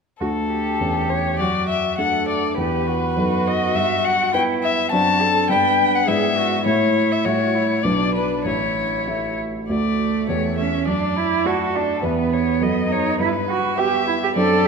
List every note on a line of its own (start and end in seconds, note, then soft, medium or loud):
0.20 0.78 D2 soft
0.20 0.76 A3 soft
0.20 0.76 D4 soft
0.20 0.29 F#4 soft
0.20 0.77 F#4 soft
0.20 1.11 A4 medium
0.51 1.42 G4 soft
0.80 1.37 E2 soft
0.80 1.35 A3 soft
0.80 1.35 C#4 soft
0.80 1.36 G4 soft
1.09 1.38 C#5 soft
1.39 1.96 F#2 soft
1.39 2.00 F#4 soft
1.39 1.68 D5 medium
1.69 1.97 E5 soft
1.98 2.53 A3 soft
1.98 2.53 D4 soft
1.98 2.54 F#4 soft
1.98 2.58 A4 soft
1.98 2.27 F#5 medium
2.28 2.57 D5 soft
2.57 3.15 E2 soft
2.57 3.13 B3 soft
2.57 3.13 E4 soft
2.57 2.88 G4 soft
2.57 3.13 G4 soft
2.57 3.49 B4 medium
2.86 4.36 F#4 medium
3.17 3.74 F#2 soft
3.17 3.71 B3 soft
3.17 3.71 D#4 soft
3.17 3.72 A4 soft
3.47 3.77 D#5 medium
3.74 4.31 G2 soft
3.74 4.06 E5 medium
4.05 4.33 F#5 medium
4.34 4.88 B3 soft
4.34 4.88 E4 soft
4.34 4.92 E4 soft
4.34 4.88 B4 soft
4.34 4.42 G5 medium
4.63 4.91 E5 medium
4.91 5.48 F#2 soft
4.91 5.46 C4 soft
4.91 5.46 D4 soft
4.91 5.23 F#4 soft
4.91 5.47 D5 soft
4.91 5.49 A5 medium
5.21 5.51 A4 medium
5.49 6.06 G2 soft
5.49 6.04 B3 soft
5.49 6.04 D4 soft
5.49 6.07 B4 medium
5.49 6.04 D5 soft
5.49 5.97 G5 medium
5.95 6.09 F#5 medium
6.08 6.64 G#2 soft
6.08 6.62 B3 soft
6.08 6.62 E4 soft
6.08 6.38 G#4 soft
6.08 6.63 D5 soft
6.08 6.66 E5 medium
6.36 6.65 F#4 medium
6.65 7.23 A2 soft
6.65 7.21 A3 soft
6.65 7.27 E4 soft
6.65 7.21 E4 soft
6.65 7.13 C#5 medium
6.65 7.21 E5 soft
7.12 7.27 E5 medium
7.25 7.83 A2 soft
7.25 7.81 G3 soft
7.25 7.81 E4 soft
7.25 7.56 F#4 soft
7.25 7.84 C#5 medium
7.25 7.81 E5 soft
7.55 7.84 E4 soft
7.83 8.44 B1 soft
7.83 8.42 F#3 soft
7.83 8.47 D4 soft
7.83 8.42 D4 soft
7.83 8.42 B4 soft
7.83 8.14 D5 medium
8.14 8.45 B4 medium
8.45 9.05 A1 soft
8.45 9.39 E4 soft
8.45 9.37 C#5 medium
9.07 9.65 A3 soft
9.07 9.65 E4 soft
9.07 9.65 E5 soft
9.69 10.27 D2 soft
9.69 10.60 A3 medium
9.69 10.25 A3 soft
9.69 10.25 F#4 soft
9.69 10.25 D5 soft
10.28 10.85 E2 soft
10.28 10.83 A3 soft
10.28 10.84 G4 soft
10.28 10.58 C#5 soft
10.28 10.84 C#5 soft
10.58 10.90 C#4 medium
10.58 10.87 E5 soft
10.86 11.43 F#2 soft
10.86 11.18 D4 medium
10.86 11.47 D5 soft
11.17 11.47 E4 medium
11.45 11.99 A3 soft
11.45 11.99 F#4 soft
11.45 11.77 F#4 medium
11.45 12.05 A4 soft
11.45 11.99 D5 soft
11.76 12.04 D4 medium
12.02 12.60 E2 soft
12.02 12.57 B3 soft
12.02 12.89 B3 medium
12.02 12.57 G4 soft
12.02 12.35 B4 soft
12.02 12.58 E5 soft
12.33 12.64 C#5 soft
12.61 13.18 F#2 soft
12.61 13.15 B3 soft
12.61 13.16 A4 soft
12.61 13.16 D#5 soft
12.61 12.93 D#5 soft
12.90 13.19 D#4 medium
12.90 13.18 C#5 soft
13.19 13.76 G2 soft
13.19 13.28 E4 medium
13.19 13.77 B4 medium
13.50 13.80 F#4 medium
13.78 14.32 B3 soft
13.78 14.07 G4 medium
13.78 14.32 G4 soft
13.78 14.35 E5 medium
13.78 14.32 E5 soft
14.08 14.13 E4 medium
14.23 14.29 G4 medium
14.36 14.68 F#2 medium
14.36 14.68 C4 soft
14.36 14.68 D4 soft
14.36 14.67 A4 medium
14.36 14.68 D5 medium
14.36 14.68 D5 soft